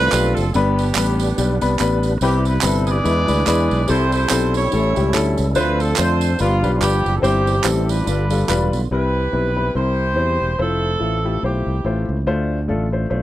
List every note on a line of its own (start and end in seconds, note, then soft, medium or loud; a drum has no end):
0.00 0.10 C2 medium
0.00 0.51 F3 medium
0.00 0.51 C4 medium
0.00 0.51 D4 medium
0.00 0.51 F4 medium
0.00 0.53 A4 medium
0.00 0.32 B4 loud
0.12 0.33 B1 medium
0.12 0.42 A3 medium
0.12 0.42 D4 medium
0.12 0.43 F4 medium
0.12 0.43 G4 medium
0.12 clap medium
0.12 tambourine medium
0.33 0.53 A4 loud
0.33 tambourine soft
0.37 0.52 F#1 medium
0.51 0.90 G1 loud
0.51 1.16 G2 medium
0.51 2.18 G3 medium
0.51 0.84 G3 medium
0.51 2.18 B3 medium
0.51 1.76 B3 medium
0.51 0.85 B3 medium
0.51 2.18 D4 medium
0.51 0.85 D4 medium
0.51 1.76 D4 medium
0.51 1.78 G4 medium
0.51 0.60 A4 medium
0.51 tambourine medium
0.56 0.85 B4 loud
0.56 2.21 B4 medium
0.79 tambourine soft
0.95 1.32 A1 medium
0.95 1.26 G3 medium
0.95 1.26 B3 medium
0.95 1.26 D4 medium
0.95 1.27 B4 medium
0.95 clap loud
0.95 tambourine loud
1.20 tambourine medium
1.38 1.58 B1 medium
1.38 1.54 G3 medium
1.38 1.54 B3 medium
1.38 1.54 D4 medium
1.38 1.54 G4 medium
1.38 tambourine medium
1.61 1.78 C2 medium
1.61 1.73 G3 medium
1.61 1.74 B3 medium
1.61 1.74 D4 medium
1.61 1.74 B4 medium
1.61 tambourine medium
1.79 2.16 A1 medium
1.79 2.10 G3 medium
1.79 2.10 B3 medium
1.79 2.10 D4 medium
1.79 2.10 B4 loud
1.79 clap medium
1.79 tambourine medium
2.03 tambourine soft
2.21 2.57 C2 loud
2.21 3.04 C3 medium
2.21 2.84 C3 medium
2.21 2.52 G3 medium
2.21 3.04 G3 medium
2.21 3.01 B3 medium
2.21 2.52 C4 medium
2.21 3.04 E4 medium
2.21 3.02 E4 medium
2.21 2.52 E4 medium
2.21 2.44 G4 medium
2.21 3.04 B4 medium
2.21 2.52 B4 medium
2.21 tambourine medium
2.45 2.63 B4 medium
2.45 tambourine soft
2.61 2.99 G1 medium
2.61 2.93 G3 medium
2.61 2.93 C4 medium
2.61 2.93 E4 medium
2.61 2.87 A4 medium
2.61 2.93 B4 medium
2.61 clap loud
2.61 tambourine loud
2.87 3.85 G#4 medium
2.87 3.85 B4 medium
2.87 3.85 D5 loud
2.87 tambourine medium
3.04 3.26 E2 loud
3.04 3.66 E3 medium
3.04 3.20 G#3 medium
3.04 3.87 G#3 medium
3.04 3.21 D4 medium
3.04 3.87 D4 medium
3.04 3.21 E4 medium
3.04 3.87 E4 soft
3.04 3.11 A4 medium
3.04 3.21 B4 medium
3.04 tambourine medium
3.11 3.90 B4 medium
3.28 3.44 D2 medium
3.28 3.40 G#3 medium
3.28 3.41 D4 medium
3.28 3.41 E4 medium
3.28 3.41 B4 medium
3.28 tambourine medium
3.46 3.68 E2 medium
3.46 3.77 G#3 medium
3.46 3.77 D4 medium
3.46 3.77 E4 medium
3.46 3.77 B4 medium
3.46 clap medium
3.46 tambourine medium
3.71 3.87 B1 loud
3.71 tambourine soft
3.87 4.25 C2 loud
3.87 4.50 C3 medium
3.87 4.18 G3 loud
3.87 4.72 G3 medium
3.87 4.18 C4 medium
3.87 4.72 C4 medium
3.87 4.18 E4 medium
3.87 4.12 E4 medium
3.87 4.72 E4 medium
3.87 4.12 G4 medium
3.87 4.19 A4 medium
3.87 4.72 A4 medium
3.87 4.13 C5 loud
3.87 tambourine medium
4.12 4.55 E4 medium
4.12 4.55 G4 medium
4.12 4.52 C5 medium
4.12 tambourine soft
4.29 4.66 B1 medium
4.29 4.60 G3 medium
4.29 4.60 C4 medium
4.29 4.60 E4 medium
4.29 4.60 A4 medium
4.29 clap loud
4.29 tambourine loud
4.54 5.35 E4 medium
4.54 5.35 G4 medium
4.54 5.15 C#5 medium
4.54 tambourine medium
4.71 4.93 A1 medium
4.71 5.34 A2 medium
4.71 4.88 G3 medium
4.71 5.56 G3 medium
4.71 4.88 C#4 medium
4.71 5.56 C#4 medium
4.71 4.88 E4 medium
4.71 5.55 E4 medium
4.71 4.89 A4 medium
4.71 5.55 A4 medium
4.71 tambourine medium
4.96 5.12 C#2 loud
4.96 5.08 G3 medium
4.96 5.08 C#4 medium
4.96 5.09 E4 medium
4.96 5.09 G4 medium
4.96 tambourine medium
5.13 5.34 D2 medium
5.13 5.44 G3 medium
5.13 5.44 C#4 medium
5.13 5.44 E4 medium
5.13 5.44 A4 medium
5.13 clap medium
5.13 tambourine medium
5.37 5.54 C#2 medium
5.37 tambourine medium
5.55 5.92 D2 loud
5.55 6.17 D3 medium
5.55 6.38 F3 medium
5.55 5.86 A3 medium
5.55 6.39 C4 medium
5.55 5.86 D4 medium
5.55 6.38 D4 medium
5.55 5.86 F4 medium
5.55 5.97 F4 medium
5.55 6.39 A4 medium
5.55 5.78 B4 loud
5.55 5.86 C5 loud
5.55 tambourine medium
5.79 5.97 A4 loud
5.79 tambourine soft
5.96 6.34 F2 loud
5.96 6.28 A3 medium
5.96 6.28 D4 medium
5.96 6.37 F4 medium
5.96 6.28 F4 medium
5.96 6.37 A4 medium
5.96 6.39 C5 loud
5.96 6.28 C5 medium
5.96 clap loud
5.96 tambourine loud
6.21 tambourine medium
6.39 6.60 G1 loud
6.39 7.01 G2 medium
6.39 7.21 F3 medium
6.39 6.55 G3 medium
6.39 7.21 B3 medium
6.39 6.82 B3 medium
6.39 7.21 D4 medium
6.39 6.56 D4 medium
6.39 6.82 D4 medium
6.39 6.56 F4 medium
6.39 6.71 F4 loud
6.39 7.22 G4 medium
6.39 6.56 B4 medium
6.39 tambourine medium
6.63 6.78 B1 medium
6.63 6.75 G3 medium
6.63 6.75 D4 medium
6.63 6.76 F4 medium
6.63 6.75 B4 medium
6.63 tambourine medium
6.72 6.81 F4 medium
6.80 7.02 G1 medium
6.80 7.11 G3 medium
6.80 7.21 B3 medium
6.80 7.11 D4 medium
6.80 7.21 D4 medium
6.80 7.11 F4 medium
6.80 7.15 G4 medium
6.80 7.11 B4 medium
6.80 clap medium
6.80 tambourine medium
7.06 7.21 F#1 medium
7.06 tambourine soft
7.14 7.23 A4 medium
7.22 7.59 G1 loud
7.22 7.84 G2 medium
7.22 7.30 D3 soft
7.22 7.52 G3 medium
7.22 8.06 G3 medium
7.22 7.53 C4 medium
7.22 8.04 C4 medium
7.22 8.06 C4 medium
7.22 7.53 E4 medium
7.22 8.03 E4 medium
7.22 8.06 G4 medium
7.22 7.65 G4 loud
7.22 7.53 C5 loud
7.22 tambourine medium
7.29 8.08 E3 medium
7.47 tambourine soft
7.64 8.01 A1 medium
7.64 7.94 G3 medium
7.64 7.95 C4 medium
7.64 7.95 E4 medium
7.64 7.95 G4 medium
7.64 7.89 A4 medium
7.64 clap loud
7.64 tambourine loud
7.88 8.69 D4 medium
7.88 8.69 F4 medium
7.88 8.73 B4 medium
7.88 tambourine medium
8.06 8.43 G1 medium
8.06 8.69 G2 medium
8.06 8.89 D3 medium
8.06 8.22 G3 medium
8.06 8.89 G3 medium
8.06 8.90 B3 medium
8.06 8.22 D4 medium
8.06 8.23 F4 medium
8.06 8.89 F4 medium
8.06 8.23 B4 medium
8.06 tambourine medium
8.30 8.43 G3 medium
8.30 8.43 D4 medium
8.30 8.43 F4 medium
8.30 8.43 A4 medium
8.30 tambourine medium
8.48 8.69 E1 medium
8.48 8.78 G3 medium
8.48 8.79 D4 medium
8.48 8.79 F4 medium
8.48 8.79 B4 medium
8.48 clap medium
8.48 tambourine medium
8.73 8.88 B1 medium
8.73 tambourine soft
8.91 9.27 C2 medium
8.91 9.53 C3 medium
8.91 9.21 G3 medium
8.91 9.21 C4 medium
8.91 9.21 E4 medium
8.91 9.71 E4 medium
8.91 9.71 G4 medium
8.91 9.72 B4 medium
8.91 9.22 B4 medium
9.32 9.69 B1 medium
9.32 9.48 G3 medium
9.32 9.49 C4 medium
9.32 9.49 E4 medium
9.32 9.49 B4 medium
9.56 9.68 G3 medium
9.56 9.69 C4 medium
9.56 9.69 E4 medium
9.56 9.69 B4 medium
9.74 10.17 C2 medium
9.74 10.37 C3 medium
9.74 10.05 G3 medium
9.74 10.05 C4 medium
9.74 10.05 E4 medium
9.74 10.56 E4 medium
9.74 10.56 G4 medium
9.74 10.05 A#4 medium
9.74 10.60 C5 loud
10.16 10.37 E2 medium
10.16 10.46 G3 medium
10.16 10.46 C4 medium
10.16 10.47 E4 medium
10.16 10.47 C5 medium
10.41 10.57 E1 medium
10.59 10.95 F1 medium
10.59 10.89 A3 medium
10.59 11.41 C4 medium
10.59 10.89 E4 medium
10.59 11.41 E4 medium
10.59 10.89 F4 medium
10.59 11.41 A4 medium
10.59 10.89 C5 medium
10.99 11.37 A1 medium
10.99 11.16 A3 medium
10.99 11.17 E4 medium
10.99 11.17 F4 medium
10.99 11.17 A4 medium
11.24 11.37 A3 medium
11.24 11.37 E4 medium
11.24 11.37 F4 medium
11.24 11.37 G4 medium
11.43 11.64 B1 medium
11.43 11.73 A3 medium
11.43 12.25 C4 soft
11.43 11.73 E4 medium
11.43 12.24 E4 medium
11.43 11.74 F4 medium
11.43 12.10 G4 medium
11.43 11.74 C5 medium
11.67 11.82 C2 medium
11.84 12.05 A1 medium
11.84 12.15 A3 medium
11.84 12.15 E4 medium
11.84 12.16 F4 medium
11.84 12.16 C5 medium
12.09 12.25 C#2 medium
12.27 12.70 D2 medium
12.27 12.89 D3 medium
12.27 12.57 A3 medium
12.27 12.57 D4 medium
12.27 12.57 F4 medium
12.27 12.58 C5 loud
12.68 13.05 A1 medium
12.68 12.85 A3 medium
12.68 12.85 D4 medium
12.68 12.85 F4 medium
12.68 12.86 A4 medium
12.92 13.05 A3 medium
12.92 13.05 D4 medium
12.92 13.05 F4 medium
12.92 13.06 C5 medium
13.10 13.22 B1 medium
13.10 13.22 A3 medium
13.10 13.22 D4 medium
13.10 13.22 F4 medium
13.10 13.22 C5 medium